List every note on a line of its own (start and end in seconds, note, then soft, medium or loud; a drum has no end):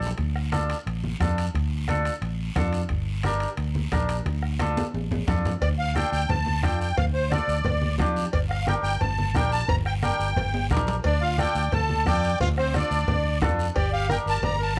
0.00 0.11 A#1 medium
0.00 short guiro medium
0.07 low timbale medium
0.18 0.73 D2 medium
0.18 bombo low medium
0.18 high timbale medium
0.18 long guiro medium
0.36 bombo rim medium
0.52 0.76 D4 medium
0.52 0.76 F4 medium
0.52 0.76 A4 medium
0.52 bombo rim medium
0.52 high conga medium
0.52 high timbale medium
0.52 short guiro medium
0.70 high timbale medium
0.70 short guiro medium
0.86 1.14 A1 medium
0.86 high timbale medium
0.86 long guiro medium
1.04 high conga medium
1.20 1.47 F2 medium
1.20 1.45 D4 medium
1.20 1.45 F4 medium
1.20 1.45 A4 medium
1.20 bombo low medium
1.20 bombo rim medium
1.20 high conga medium
1.20 high timbale medium
1.20 short guiro medium
1.38 high timbale medium
1.38 short guiro medium
1.54 2.09 D2 medium
1.54 bombo low medium
1.54 high timbale medium
1.54 long guiro medium
1.88 2.12 D4 medium
1.88 2.13 F4 medium
1.88 2.13 A4 medium
1.88 bombo rim medium
1.88 high conga medium
1.88 high timbale medium
1.88 short guiro medium
2.05 high timbale medium
2.05 short guiro medium
2.22 2.49 A1 medium
2.22 high timbale medium
2.22 long guiro medium
2.56 2.83 F2 medium
2.56 2.80 D4 medium
2.56 2.80 F4 medium
2.56 2.81 A4 medium
2.56 bombo low medium
2.56 bombo rim medium
2.56 high conga medium
2.56 high timbale medium
2.56 low timbale medium
2.56 short guiro medium
2.73 high timbale medium
2.73 short guiro medium
2.89 3.44 G1 medium
2.89 bombo low medium
2.89 high timbale medium
2.89 long guiro medium
3.23 3.49 D4 medium
3.23 3.49 G4 medium
3.23 3.49 A#4 medium
3.23 bombo rim medium
3.23 high conga medium
3.23 high timbale medium
3.23 short guiro medium
3.40 high timbale medium
3.40 short guiro medium
3.57 3.85 D2 loud
3.57 high timbale medium
3.57 long guiro medium
3.75 high conga medium
3.92 4.19 A#1 medium
3.92 4.16 D4 medium
3.92 4.16 G4 medium
3.92 4.16 A#4 medium
3.92 bombo low medium
3.92 bombo rim medium
3.92 high conga medium
3.92 high timbale medium
3.92 low timbale medium
3.92 short guiro medium
4.09 high timbale medium
4.09 short guiro medium
4.26 4.80 D2 medium
4.26 bombo low medium
4.26 high timbale medium
4.26 long guiro medium
4.43 bombo rim medium
4.59 4.84 D4 medium
4.59 4.84 F4 medium
4.59 4.85 A4 medium
4.59 bombo rim medium
4.59 high conga medium
4.59 high timbale medium
4.59 short guiro medium
4.77 high conga medium
4.77 high timbale medium
4.77 short guiro medium
4.94 5.21 A1 medium
4.94 high timbale medium
4.94 long guiro medium
5.11 low conga medium
5.11 high timbale medium
5.27 5.55 F2 medium
5.27 5.52 D4 medium
5.27 5.52 F4 medium
5.27 5.52 A4 medium
5.27 bombo low medium
5.27 bombo rim medium
5.27 low conga loud
5.27 low timbale medium
5.27 short guiro medium
5.45 low conga medium
5.45 low timbale medium
5.45 short guiro medium
5.61 6.03 D2 loud
5.61 5.69 D5 medium
5.61 bombo low medium
5.61 cowbell loud
5.61 long guiro medium
5.79 5.95 F5 loud
5.95 6.20 D4 medium
5.95 6.20 F4 medium
5.95 6.20 A4 medium
5.95 6.10 G5 medium
5.95 bombo rim medium
5.95 high conga medium
5.95 short guiro medium
6.12 6.26 D2 medium
6.12 6.30 G5 loud
6.12 short guiro medium
6.29 6.64 D2 medium
6.29 6.61 A5 medium
6.29 cowbell medium
6.29 low conga medium
6.29 long guiro medium
6.46 high conga medium
6.63 6.91 F2 medium
6.63 6.87 D4 medium
6.63 6.88 F4 medium
6.63 6.87 A4 medium
6.63 6.79 G5 medium
6.63 bombo low medium
6.63 bombo rim medium
6.63 high conga medium
6.63 low timbale medium
6.63 short guiro medium
6.81 6.97 G5 medium
6.81 short guiro medium
6.97 7.38 D2 loud
6.97 7.05 F5 loud
6.97 bombo low medium
6.97 cowbell loud
6.97 low conga medium
6.97 long guiro medium
7.14 7.32 C5 medium
7.30 7.56 D4 medium
7.30 7.56 F4 medium
7.30 7.56 A4 medium
7.30 7.95 D5 medium
7.30 bombo rim medium
7.30 high conga medium
7.30 short guiro medium
7.48 7.62 D2 medium
7.48 short guiro medium
7.65 7.99 D2 loud
7.65 cowbell medium
7.65 low conga medium
7.65 long guiro medium
7.82 high conga medium
7.98 8.27 F2 medium
7.98 8.24 D4 loud
7.98 8.24 F4 medium
7.98 8.24 G4 medium
7.98 bombo low medium
7.98 bombo rim medium
7.98 high conga medium
7.98 low timbale medium
7.98 short guiro medium
8.16 short guiro medium
8.32 8.74 G1 loud
8.32 8.40 D5 medium
8.32 bombo low medium
8.32 cowbell loud
8.32 long guiro medium
8.50 8.66 F5 medium
8.50 bombo rim medium
8.67 8.91 D4 medium
8.67 8.92 G4 medium
8.67 8.92 A#4 medium
8.67 8.75 G5 loud
8.67 bombo rim medium
8.67 high conga medium
8.67 short guiro medium
8.83 8.97 G1 medium
8.83 9.01 G5 loud
8.83 short guiro medium
9.00 9.35 G1 loud
9.00 9.36 A5 medium
9.00 cowbell medium
9.00 low conga medium
9.00 long guiro medium
9.18 high conga medium
9.34 9.62 A#1 medium
9.34 9.59 D4 medium
9.34 9.60 G4 medium
9.34 9.60 A#4 medium
9.34 9.51 G5 medium
9.34 bombo low medium
9.34 bombo rim medium
9.34 high conga medium
9.34 low timbale medium
9.34 short guiro medium
9.52 9.68 A5 loud
9.52 short guiro medium
9.68 10.10 G1 loud
9.68 9.76 A#5 loud
9.68 bombo low medium
9.68 cowbell loud
9.68 low conga medium
9.68 long guiro medium
9.86 9.94 G5 medium
9.86 bombo rim medium
10.03 10.27 D4 medium
10.03 10.27 G4 medium
10.03 10.27 A#4 medium
10.03 10.67 G5 medium
10.03 bombo rim medium
10.03 high conga medium
10.03 short guiro medium
10.19 10.33 G1 medium
10.19 short guiro medium
10.37 10.71 G1 medium
10.37 cowbell medium
10.37 low conga medium
10.37 long guiro medium
10.54 high timbale medium
10.71 10.98 A#1 medium
10.71 10.95 D4 medium
10.71 10.95 G4 medium
10.71 10.95 A#4 loud
10.71 bombo low medium
10.71 bombo rim medium
10.71 high conga medium
10.71 short guiro medium
10.77 low timbale medium
10.87 low timbale medium
10.87 short guiro medium
11.04 11.45 D2 loud
11.04 11.20 D4 medium
11.04 11.22 D5 medium
11.04 bombo low medium
11.04 cowbell loud
11.04 long guiro medium
11.21 11.37 F4 medium
11.21 11.39 F5 medium
11.37 11.62 D4 medium
11.37 11.63 F4 medium
11.37 11.63 A4 medium
11.37 11.70 D5 medium
11.37 11.74 G5 medium
11.37 bombo rim medium
11.37 high conga medium
11.37 short guiro medium
11.55 11.69 D2 medium
11.55 short guiro medium
11.72 12.06 D2 medium
11.72 12.05 A4 medium
11.72 12.08 A5 medium
11.72 cowbell medium
11.72 low conga medium
11.72 long guiro medium
11.89 high conga medium
12.06 12.34 F2 medium
12.06 12.30 D4 medium
12.06 12.31 F4 medium
12.06 12.31 A4 medium
12.06 12.38 D5 medium
12.06 12.39 G5 medium
12.06 bombo low medium
12.06 bombo rim medium
12.06 high conga medium
12.06 short guiro medium
12.23 short guiro medium
12.40 12.81 D2 loud
12.40 12.48 F4 medium
12.40 12.49 F5 loud
12.40 bombo low medium
12.40 cowbell loud
12.40 low conga medium
12.40 long guiro medium
12.58 12.74 C4 medium
12.58 12.75 C5 medium
12.58 bombo rim medium
12.74 13.38 D4 medium
12.74 12.98 D4 medium
12.74 12.99 F4 medium
12.74 12.98 A4 medium
12.74 13.39 D5 medium
12.74 bombo rim medium
12.74 high conga medium
12.74 short guiro medium
12.91 13.05 D2 medium
12.91 short guiro medium
13.08 13.42 D2 loud
13.08 cowbell medium
13.08 low conga medium
13.08 long guiro medium
13.42 13.69 F2 medium
13.42 13.66 D4 medium
13.42 13.66 F4 medium
13.42 13.66 A4 medium
13.42 bombo low medium
13.42 bombo rim medium
13.42 high conga medium
13.42 low conga medium
13.42 low timbale medium
13.42 short guiro medium
13.59 short guiro medium
13.75 14.17 G1 loud
13.75 13.91 G4 medium
13.75 13.92 D5 medium
13.75 bombo low medium
13.75 cowbell loud
13.75 long guiro medium
13.92 14.09 G4 medium
13.92 14.09 F5 loud
14.09 14.34 D4 medium
14.09 14.34 G4 medium
14.09 14.17 A#4 medium
14.09 14.34 A#4 medium
14.09 14.18 G5 medium
14.09 bombo rim medium
14.09 high conga medium
14.09 short guiro medium
14.26 14.40 G1 medium
14.26 14.42 A#4 medium
14.26 14.44 A5 loud
14.26 short guiro medium
14.42 14.77 G1 medium
14.42 14.58 D5 medium
14.42 14.62 A#5 loud
14.42 cowbell medium
14.42 low conga medium
14.42 long guiro medium
14.59 14.76 A#4 medium
14.59 14.77 A5 medium